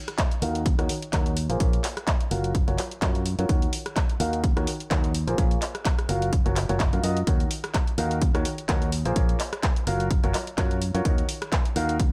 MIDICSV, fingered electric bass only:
0, 0, Header, 1, 2, 480
1, 0, Start_track
1, 0, Key_signature, -6, "minor"
1, 0, Tempo, 472441
1, 1628, Time_signature, 4, 2, 24, 8
1, 12316, End_track
2, 0, Start_track
2, 0, Title_t, "Fingered electric bass"
2, 0, Program_c, 0, 33
2, 427, Note_on_c, 0, 39, 94
2, 773, Note_off_c, 0, 39, 0
2, 800, Note_on_c, 0, 39, 93
2, 884, Note_off_c, 0, 39, 0
2, 1148, Note_on_c, 0, 39, 92
2, 1494, Note_off_c, 0, 39, 0
2, 1519, Note_on_c, 0, 34, 92
2, 1606, Note_off_c, 0, 34, 0
2, 1628, Note_on_c, 0, 34, 92
2, 1800, Note_off_c, 0, 34, 0
2, 2347, Note_on_c, 0, 30, 93
2, 2693, Note_off_c, 0, 30, 0
2, 2720, Note_on_c, 0, 30, 94
2, 2804, Note_off_c, 0, 30, 0
2, 3068, Note_on_c, 0, 42, 91
2, 3414, Note_off_c, 0, 42, 0
2, 3441, Note_on_c, 0, 42, 96
2, 3526, Note_off_c, 0, 42, 0
2, 3547, Note_on_c, 0, 39, 94
2, 3720, Note_off_c, 0, 39, 0
2, 4267, Note_on_c, 0, 39, 100
2, 4613, Note_off_c, 0, 39, 0
2, 4639, Note_on_c, 0, 39, 91
2, 4724, Note_off_c, 0, 39, 0
2, 4988, Note_on_c, 0, 39, 91
2, 5334, Note_off_c, 0, 39, 0
2, 5359, Note_on_c, 0, 34, 98
2, 5445, Note_off_c, 0, 34, 0
2, 5467, Note_on_c, 0, 34, 91
2, 5640, Note_off_c, 0, 34, 0
2, 6186, Note_on_c, 0, 30, 96
2, 6533, Note_off_c, 0, 30, 0
2, 6560, Note_on_c, 0, 30, 94
2, 6774, Note_off_c, 0, 30, 0
2, 6800, Note_on_c, 0, 30, 88
2, 7013, Note_off_c, 0, 30, 0
2, 7039, Note_on_c, 0, 42, 93
2, 7126, Note_off_c, 0, 42, 0
2, 7147, Note_on_c, 0, 42, 92
2, 7366, Note_off_c, 0, 42, 0
2, 7388, Note_on_c, 0, 39, 94
2, 7560, Note_off_c, 0, 39, 0
2, 8106, Note_on_c, 0, 39, 96
2, 8453, Note_off_c, 0, 39, 0
2, 8480, Note_on_c, 0, 39, 90
2, 8564, Note_off_c, 0, 39, 0
2, 8827, Note_on_c, 0, 39, 90
2, 9173, Note_off_c, 0, 39, 0
2, 9200, Note_on_c, 0, 34, 90
2, 9286, Note_off_c, 0, 34, 0
2, 9307, Note_on_c, 0, 34, 95
2, 9480, Note_off_c, 0, 34, 0
2, 10027, Note_on_c, 0, 30, 99
2, 10373, Note_off_c, 0, 30, 0
2, 10400, Note_on_c, 0, 30, 93
2, 10484, Note_off_c, 0, 30, 0
2, 10747, Note_on_c, 0, 42, 96
2, 11094, Note_off_c, 0, 42, 0
2, 11120, Note_on_c, 0, 42, 98
2, 11206, Note_off_c, 0, 42, 0
2, 11228, Note_on_c, 0, 39, 98
2, 11400, Note_off_c, 0, 39, 0
2, 11948, Note_on_c, 0, 39, 98
2, 12294, Note_off_c, 0, 39, 0
2, 12316, End_track
0, 0, End_of_file